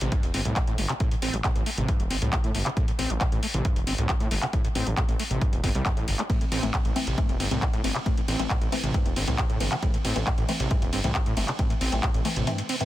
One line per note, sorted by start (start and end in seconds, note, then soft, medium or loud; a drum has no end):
0.00 0.09 A1 medium
0.00 0.14 C3 medium
0.00 closed hi-hat medium
0.00 impact medium
0.12 0.25 G2 medium
0.12 kick loud
0.12 closed hi-hat medium
0.23 0.31 E1 loud
0.23 0.27 A2 loud
0.23 closed hi-hat medium
0.34 0.42 G1 loud
0.34 0.40 C4 loud
0.34 open hi-hat loud
0.45 0.53 C2 loud
0.45 0.54 A2 loud
0.45 closed hi-hat medium
0.56 kick loud
0.56 clap loud
0.56 closed hi-hat medium
0.67 0.75 A2 loud
0.67 0.73 A2 loud
0.67 closed hi-hat medium
0.78 0.86 G1 medium
0.78 0.82 A3 medium
0.78 open hi-hat loud
0.89 0.93 C3 medium
0.89 clap medium
0.89 closed hi-hat medium
1.00 1.10 A2 medium
1.00 kick loud
1.00 closed hi-hat medium
1.11 1.15 A2 loud
1.11 closed hi-hat medium
1.22 1.30 A1 loud
1.22 1.35 C4 loud
1.22 open hi-hat loud
1.34 1.41 A1 loud
1.34 1.37 D3 loud
1.34 closed hi-hat medium
1.44 1.51 A2 medium
1.44 kick loud
1.44 clap loud
1.44 closed hi-hat medium
1.55 1.63 A1 loud
1.55 1.62 A2 loud
1.55 closed hi-hat medium
1.66 1.70 A3 medium
1.66 open hi-hat loud
1.78 1.85 A1 medium
1.78 1.90 C3 medium
1.78 closed hi-hat medium
1.88 2.01 G2 medium
1.88 kick loud
1.88 closed hi-hat medium
2.00 2.07 E1 loud
2.00 2.03 A2 loud
2.00 closed hi-hat medium
2.10 2.18 G1 medium
2.10 2.17 C4 loud
2.10 open hi-hat loud
2.22 2.29 C2 loud
2.22 2.31 A2 loud
2.22 closed hi-hat medium
2.33 kick loud
2.33 clap loud
2.33 closed hi-hat medium
2.44 2.51 A2 loud
2.44 2.50 A2 loud
2.44 closed hi-hat medium
2.55 2.63 G1 medium
2.55 2.58 A3 medium
2.55 open hi-hat loud
2.66 2.69 C3 medium
2.66 clap medium
2.66 closed hi-hat medium
2.77 2.86 A2 medium
2.77 kick loud
2.77 closed hi-hat medium
2.88 2.91 A2 loud
2.88 closed hi-hat medium
2.99 3.07 A1 loud
2.99 3.12 C4 loud
2.99 open hi-hat loud
3.10 3.18 A1 loud
3.10 3.14 D3 loud
3.10 closed hi-hat medium
3.21 3.27 A2 medium
3.21 kick loud
3.21 clap loud
3.21 closed hi-hat medium
3.32 3.40 A1 loud
3.32 3.38 A2 loud
3.32 closed hi-hat medium
3.43 3.47 A3 medium
3.43 open hi-hat loud
3.54 3.62 A1 medium
3.54 3.67 C3 medium
3.54 closed hi-hat medium
3.65 3.78 G2 medium
3.65 kick loud
3.65 closed hi-hat medium
3.76 3.84 E1 loud
3.76 3.80 A2 loud
3.76 closed hi-hat medium
3.87 3.95 G1 medium
3.87 3.93 C4 loud
3.87 open hi-hat loud
3.98 4.06 C2 loud
3.98 4.07 A2 loud
3.98 closed hi-hat medium
4.09 4.15 A2 medium
4.09 kick loud
4.09 clap loud
4.09 closed hi-hat medium
4.20 4.28 A2 loud
4.20 4.26 A2 loud
4.20 closed hi-hat medium
4.31 4.39 G1 medium
4.31 4.35 A3 medium
4.31 open hi-hat loud
4.42 4.46 C3 medium
4.42 clap medium
4.42 closed hi-hat medium
4.53 4.62 A2 medium
4.53 kick loud
4.53 closed hi-hat medium
4.65 4.68 A2 loud
4.65 closed hi-hat medium
4.75 4.83 A1 loud
4.75 4.88 C4 loud
4.75 open hi-hat loud
4.87 4.94 A1 loud
4.87 4.90 D3 loud
4.87 closed hi-hat medium
4.97 5.04 A2 medium
4.97 kick loud
4.97 clap loud
4.97 closed hi-hat medium
5.09 5.16 A1 loud
5.09 5.15 A2 loud
5.09 closed hi-hat medium
5.19 5.23 A3 medium
5.19 open hi-hat loud
5.31 5.38 A1 medium
5.31 5.43 C3 medium
5.31 closed hi-hat medium
5.41 5.55 G2 medium
5.41 kick loud
5.41 closed hi-hat medium
5.53 5.60 E1 loud
5.53 5.56 A2 loud
5.53 closed hi-hat medium
5.64 5.71 G1 loud
5.64 5.70 C4 medium
5.64 kick medium
5.64 open hi-hat loud
5.75 5.82 C2 loud
5.75 5.84 G3 medium
5.75 closed hi-hat medium
5.86 5.92 G2 loud
5.86 kick loud
5.86 clap loud
5.86 closed hi-hat medium
5.97 6.09 A1 loud
5.97 6.04 A2 loud
5.97 closed hi-hat medium
6.08 6.15 G1 medium
6.08 6.14 A2 medium
6.08 open hi-hat loud
6.19 6.23 A3 medium
6.19 clap medium
6.19 closed hi-hat medium
6.30 6.39 A2 medium
6.30 6.46 E3 medium
6.30 6.46 A3 medium
6.30 6.46 C4 medium
6.30 kick loud
6.30 closed hi-hat medium
6.30 ride medium
6.41 6.45 A2 loud
6.41 closed hi-hat medium
6.52 6.60 A1 loud
6.52 6.65 C4 loud
6.52 open hi-hat loud
6.52 ride medium
6.63 6.71 A1 loud
6.63 6.67 D3 loud
6.63 6.73 E3 medium
6.63 6.73 A3 medium
6.63 6.73 C4 loud
6.63 closed hi-hat medium
6.74 6.80 A2 medium
6.74 kick loud
6.74 clap loud
6.74 closed hi-hat medium
6.74 ride medium
6.85 6.93 A1 loud
6.85 6.91 A2 loud
6.85 closed hi-hat medium
6.96 7.06 E3 medium
6.96 7.06 A3 medium
6.96 7.00 A3 medium
6.96 7.06 C4 loud
6.96 open hi-hat loud
6.96 ride medium
7.07 7.15 A1 medium
7.07 7.19 C3 medium
7.07 closed hi-hat medium
7.18 7.31 G2 medium
7.18 7.28 E3 medium
7.18 7.28 A3 medium
7.18 7.28 C4 loud
7.18 kick loud
7.18 closed hi-hat medium
7.29 7.37 E1 loud
7.29 7.33 A2 loud
7.29 closed hi-hat medium
7.40 7.48 G1 loud
7.40 7.46 C4 loud
7.40 open hi-hat loud
7.40 ride medium
7.51 7.59 C2 loud
7.51 7.60 A2 loud
7.51 7.61 E3 medium
7.51 7.61 A3 medium
7.51 7.61 C4 medium
7.51 closed hi-hat medium
7.62 7.68 A2 medium
7.62 kick loud
7.62 clap loud
7.62 closed hi-hat medium
7.62 ride medium
7.73 7.81 A2 loud
7.73 7.79 A2 loud
7.73 closed hi-hat medium
7.84 7.92 G1 medium
7.84 7.94 E3 medium
7.84 7.94 A3 medium
7.84 7.88 A3 medium
7.84 7.94 C4 medium
7.84 open hi-hat loud
7.84 ride medium
7.95 7.99 C3 medium
7.95 clap medium
7.95 closed hi-hat medium
8.06 8.15 A2 medium
8.06 8.22 E3 medium
8.06 8.22 A3 medium
8.06 8.22 C4 medium
8.06 kick loud
8.06 closed hi-hat medium
8.06 ride medium
8.17 8.21 A2 loud
8.17 closed hi-hat medium
8.28 8.36 A1 loud
8.28 8.41 C4 loud
8.28 open hi-hat loud
8.28 ride medium
8.39 8.47 A1 loud
8.39 8.43 D3 loud
8.39 8.49 E3 medium
8.39 8.49 A3 medium
8.39 8.49 C4 loud
8.39 closed hi-hat medium
8.50 8.56 A2 medium
8.50 kick loud
8.50 clap loud
8.50 closed hi-hat medium
8.61 8.69 A1 loud
8.61 8.67 A2 loud
8.61 closed hi-hat medium
8.72 8.83 E3 medium
8.72 8.83 A3 medium
8.72 8.76 A3 medium
8.72 8.83 C4 loud
8.72 open hi-hat loud
8.72 ride medium
8.83 8.91 A1 medium
8.83 8.96 C3 medium
8.83 closed hi-hat medium
8.94 9.07 G2 medium
8.94 9.05 E3 loud
8.94 9.05 A3 medium
8.94 9.05 C4 loud
8.94 kick loud
8.94 closed hi-hat medium
8.94 ride medium
9.06 9.13 E1 loud
9.06 9.09 A2 loud
9.06 closed hi-hat medium
9.16 9.24 G1 loud
9.16 9.23 C4 loud
9.16 open hi-hat loud
9.16 ride medium
9.28 9.35 C2 loud
9.28 9.37 A2 loud
9.28 9.38 E3 medium
9.28 9.38 A3 medium
9.28 9.38 C4 loud
9.28 closed hi-hat medium
9.38 9.45 A2 medium
9.38 kick loud
9.38 clap loud
9.38 closed hi-hat medium
9.50 9.56 A2 loud
9.50 9.57 A2 loud
9.50 closed hi-hat medium
9.60 9.68 G1 medium
9.60 9.71 E3 medium
9.60 9.71 A3 medium
9.60 9.64 A3 medium
9.60 9.71 C4 medium
9.60 open hi-hat loud
9.60 ride medium
9.72 9.75 C3 medium
9.72 clap medium
9.72 closed hi-hat medium
9.82 9.92 A2 medium
9.82 9.99 E3 medium
9.82 9.99 A3 medium
9.82 9.99 C4 medium
9.82 kick loud
9.82 closed hi-hat medium
9.82 ride medium
9.94 9.97 A2 loud
9.94 closed hi-hat medium
10.05 10.13 A1 loud
10.05 10.17 C4 loud
10.05 open hi-hat loud
10.05 ride medium
10.16 10.23 A1 loud
10.16 10.19 D3 loud
10.16 10.26 E3 medium
10.16 10.26 A3 medium
10.16 10.26 C4 loud
10.16 closed hi-hat medium
10.27 10.33 A2 medium
10.27 kick loud
10.27 clap loud
10.27 closed hi-hat medium
10.38 10.45 A1 loud
10.38 10.44 A2 loud
10.38 closed hi-hat medium
10.49 10.59 E3 medium
10.49 10.59 A3 medium
10.49 10.53 A3 medium
10.49 10.59 C4 loud
10.49 open hi-hat loud
10.49 ride medium
10.60 10.67 A1 medium
10.60 10.72 C3 medium
10.60 closed hi-hat medium
10.71 10.84 G2 medium
10.71 10.81 E3 loud
10.71 10.81 A3 medium
10.71 10.81 C4 loud
10.71 kick loud
10.71 closed hi-hat medium
10.82 10.90 E1 loud
10.82 10.86 A2 loud
10.82 closed hi-hat medium
10.93 11.01 G1 medium
10.93 10.99 C4 loud
10.93 open hi-hat loud
10.93 ride medium
11.04 11.12 C2 loud
11.04 11.13 A2 loud
11.04 11.14 E3 medium
11.04 11.14 A3 medium
11.04 11.14 C4 loud
11.04 closed hi-hat medium
11.15 kick loud
11.15 clap loud
11.15 closed hi-hat medium
11.26 11.34 A2 loud
11.26 11.32 A2 loud
11.26 closed hi-hat medium
11.37 11.45 G1 medium
11.37 11.47 E3 medium
11.37 11.47 A3 medium
11.37 11.41 A3 medium
11.37 11.47 C4 medium
11.37 open hi-hat loud
11.37 ride medium
11.48 11.52 C3 medium
11.48 clap medium
11.48 closed hi-hat medium
11.59 11.68 A2 medium
11.59 11.75 E3 medium
11.59 11.75 A3 medium
11.59 11.75 C4 medium
11.59 kick loud
11.59 closed hi-hat medium
11.59 ride medium
11.70 11.74 A2 loud
11.70 closed hi-hat medium
11.81 11.89 A1 loud
11.81 11.94 C4 loud
11.81 open hi-hat loud
11.81 ride medium
11.92 12.00 A1 loud
11.92 11.96 D3 loud
11.92 12.02 E3 medium
11.92 12.02 A3 medium
11.92 12.02 C4 loud
11.92 closed hi-hat medium
12.03 12.09 A2 medium
12.03 kick loud
12.03 clap loud
12.03 closed hi-hat medium
12.14 12.22 A1 loud
12.14 12.20 A2 loud
12.14 closed hi-hat medium
12.25 12.36 E3 medium
12.25 12.36 A3 medium
12.25 12.29 A3 medium
12.25 12.36 C4 loud
12.25 open hi-hat loud
12.25 ride medium
12.36 12.44 A1 medium
12.36 12.49 C3 medium
12.36 closed hi-hat medium
12.47 12.60 G2 medium
12.47 12.58 E3 loud
12.47 12.58 A3 medium
12.47 12.58 C4 loud
12.47 closed hi-hat medium
12.47 ride medium
12.58 12.62 A2 loud
12.58 closed hi-hat medium
12.69 12.76 C4 loud
12.69 open hi-hat loud
12.69 ride medium
12.80 12.85 A2 loud
12.80 12.85 E3 medium
12.80 12.85 A3 medium
12.80 12.85 C4 loud
12.80 closed hi-hat medium